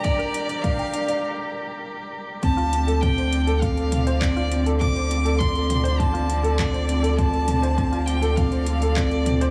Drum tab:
HH |xxxxxxxx--------|xxxxxxxxxxxxxxxx|xxxxxxxxxxxxxxxx|xxxxxxxxxxxxxxxx|
CP |----------------|------------x---|------------x---|------------x---|
T2 |----o-----------|----o-----o-----|o-----o-----o---|--o-----o-----o-|
BD |o---o-----------|o---o---o---o---|o---o---o---o---|o---o---o---o---|